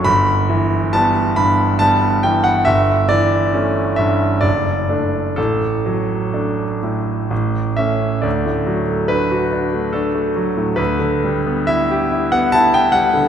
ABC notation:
X:1
M:3/4
L:1/16
Q:1/4=69
K:D
V:1 name="Grand piano"
b4 a2 b2 a2 g f | e2 d4 e2 d4 | A8- A2 e2 | d4 B4 A4 |
B4 e3 f a g f2 |]
V:2 name="Grand piano" clef=bass
G,,,2 E,2 [G,B,]2 G,,2 [G,B,]2 E,2 | G,,,2 E,2 [A,C]2 G,,2 F,,,2 [A,D]2 | A,,,2 F,2 [A,D]2 A,,2 A,,,2 [A,C]2 | D,, A,, F, A, D F D A, D A, F, A,, |
D,, D, G, B, E G E B, E B, G, D, |]